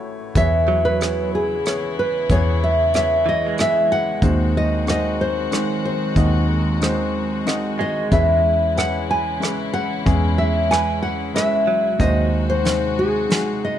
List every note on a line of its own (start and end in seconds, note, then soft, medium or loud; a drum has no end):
0.00 0.32 A1 medium
0.00 0.31 A2 medium
0.00 0.38 A3 medium
0.00 0.36 E4 medium
0.00 0.37 F#4 medium
0.00 0.37 B4 medium
0.00 0.36 C#5 medium
0.35 2.26 E2 medium
0.35 1.61 E2 medium
0.35 4.17 C#3 medium
0.35 4.18 E3 medium
0.35 2.26 E3 medium
0.35 11.95 G#3 medium
0.35 0.91 B3 medium
0.35 4.18 B3 medium
0.35 0.91 E4 medium
0.35 4.18 E4 medium
0.35 0.91 G#4 medium
0.35 0.91 C#5 medium
0.35 0.87 E5 medium
0.35 kick medium
0.35 closed hi-hat medium
0.68 1.55 F#3 medium
0.85 1.30 B4 medium
1.00 1.56 B3 medium
1.00 1.56 E4 medium
1.00 1.56 G#4 medium
1.00 1.56 C#5 medium
1.00 cross-stick medium
1.00 closed hi-hat soft
1.35 1.99 G#4 medium
1.65 2.20 B3 medium
1.65 2.20 E4 medium
1.65 2.21 G#4 medium
1.65 2.21 C#5 medium
1.65 cross-stick medium
1.65 closed hi-hat soft
1.99 2.31 B4 medium
2.30 3.54 E2 medium
2.30 4.18 E2 medium
2.30 4.18 E3 medium
2.30 2.84 B3 medium
2.30 2.85 E4 medium
2.30 2.85 G#4 medium
2.30 2.85 C#5 medium
2.30 2.63 C#5 medium
2.30 kick medium
2.30 closed hi-hat soft
2.64 2.94 E5 medium
2.94 3.49 B3 medium
2.94 3.49 E4 medium
2.94 3.49 G#4 medium
2.94 3.49 C#5 medium
2.94 3.28 E5 medium
2.94 cross-stick medium
2.94 closed hi-hat soft
3.26 4.11 E3 soft
3.26 3.60 D#5 medium
3.47 4.30 G#3 medium
3.58 4.13 B3 medium
3.58 4.13 E4 medium
3.58 4.13 G#4 medium
3.58 4.13 B4 medium
3.58 3.91 E5 medium
3.58 cross-stick medium
3.58 closed hi-hat soft
3.92 4.57 F#5 loud
4.22 5.47 D#2 medium
4.22 6.12 D#2 medium
4.22 6.12 D#3 medium
4.22 8.08 D#3 medium
4.22 8.08 F#3 medium
4.22 4.77 G#3 medium
4.22 8.08 C4 medium
4.22 4.77 D#4 medium
4.22 4.77 F#4 medium
4.22 8.08 F#4 medium
4.22 4.77 C5 medium
4.22 kick medium
4.22 closed hi-hat soft
4.57 4.86 D#5 medium
4.87 5.42 G#3 medium
4.87 5.42 D#4 medium
4.87 5.42 F#4 medium
4.87 5.42 C5 medium
4.87 5.21 D#5 medium
4.87 cross-stick medium
4.87 closed hi-hat soft
5.21 5.84 C5 medium
5.51 6.06 G#3 medium
5.51 6.06 D#4 medium
5.51 6.06 F#4 medium
5.51 6.07 C5 medium
5.51 cross-stick medium
5.51 closed hi-hat medium
5.85 6.45 C5 medium
6.16 7.42 D#2 medium
6.16 8.08 D#2 medium
6.16 8.08 D#3 medium
6.16 6.71 G#3 medium
6.16 6.71 D#4 medium
6.16 6.71 F#4 medium
6.16 6.72 D#5 medium
6.16 kick medium
6.16 closed hi-hat medium
6.81 7.37 G#3 medium
6.81 7.37 D#4 medium
6.81 7.37 F#4 medium
6.81 7.37 C5 medium
6.81 cross-stick medium
6.81 closed hi-hat soft
7.46 8.02 G#3 medium
7.46 8.02 D#4 medium
7.46 8.02 F#4 medium
7.46 8.02 D#5 medium
7.46 cross-stick medium
7.46 closed hi-hat soft
7.79 8.40 G#3 medium
7.79 8.12 D#5 medium
8.10 9.38 E2 medium
8.10 10.02 E2 medium
8.10 11.95 C#3 medium
8.10 11.95 E3 medium
8.10 10.02 E3 medium
8.10 8.67 G#3 medium
8.10 10.04 B3 medium
8.10 8.67 C#4 medium
8.10 11.95 E4 medium
8.10 8.67 E4 medium
8.10 8.67 B4 medium
8.10 8.78 E5 medium
8.10 kick medium
8.10 closed hi-hat soft
8.76 9.32 G#3 medium
8.76 9.32 C#4 medium
8.76 9.32 E4 medium
8.76 9.32 B4 medium
8.76 9.10 F#5 medium
8.76 cross-stick medium
8.76 closed hi-hat soft
9.11 9.73 G#5 medium
9.40 9.96 G#3 medium
9.40 9.96 C#4 medium
9.40 9.96 E4 medium
9.40 9.96 B4 medium
9.40 cross-stick medium
9.40 closed hi-hat soft
9.74 10.38 F#5 loud
10.05 11.95 E2 medium
10.05 11.31 E2 medium
10.05 11.95 E3 medium
10.05 10.61 G#3 medium
10.05 10.61 C#4 medium
10.05 11.97 C#4 medium
10.05 10.61 E4 medium
10.05 10.61 G#4 medium
10.05 kick medium
10.05 closed hi-hat soft
10.38 10.70 E5 medium
10.70 11.25 G#3 medium
10.70 11.25 C#4 medium
10.70 11.25 E4 medium
10.70 11.25 B4 medium
10.70 11.02 G#5 medium
10.70 cross-stick medium
10.70 closed hi-hat soft
11.03 11.35 F#5 medium
11.34 11.89 G#3 medium
11.34 11.90 C#4 medium
11.34 11.89 E4 medium
11.34 11.90 B4 medium
11.34 11.80 E5 medium
11.34 cross-stick medium
11.34 closed hi-hat medium
11.67 12.28 F#3 soft
11.99 13.79 D#2 medium
11.99 13.26 D#2 loud
11.99 13.79 C3 medium
11.99 13.79 D#3 medium
11.99 13.79 F#3 medium
11.99 12.54 G#3 medium
11.99 13.79 G#3 medium
11.99 12.55 D#4 medium
11.99 13.79 F#4 medium
11.99 12.55 F#4 medium
11.99 12.55 C5 medium
11.99 12.45 D#5 loud
11.99 kick medium
11.99 closed hi-hat soft
12.50 12.99 C5 medium
12.64 13.20 G#3 medium
12.64 13.20 D#4 medium
12.64 13.20 F#4 medium
12.64 13.20 C5 medium
12.64 snare medium
12.64 closed hi-hat soft
12.99 13.65 G#4 medium
13.29 13.79 G#3 medium
13.29 13.79 D#4 medium
13.29 13.79 F#4 medium
13.29 13.79 G#4 medium
13.29 snare medium
13.29 closed hi-hat soft
13.65 13.79 D#5 medium